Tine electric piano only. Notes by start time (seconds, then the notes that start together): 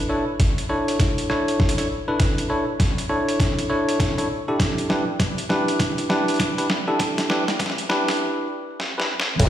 0.09 D4 E4 A4 C#5
0.69 D4 E4 A4 C#5
1.30 D4 E4 A4 C#5
1.78 D4 E4 A4 C#5
2.08 D4 E4 A4 B4
2.50 D4 E4 A4 C#5
3.09 D4 E4 A4 C#5
3.70 D4 E4 A4 C#5
4.18 D4 E4 A4 C#5
4.48 D4 E4 G4 A4
4.90 D4 E4 G4 B4
5.49 D4 E4 G4 B4
6.09 D4 E4 G4 B4
6.58 D4 E4 G4 B4
6.88 D4 E4 G4 A4
7.29 D4 E4 G4 B4
7.89 D4 E4 G4 B4
8.98 D4 E4 G4 B4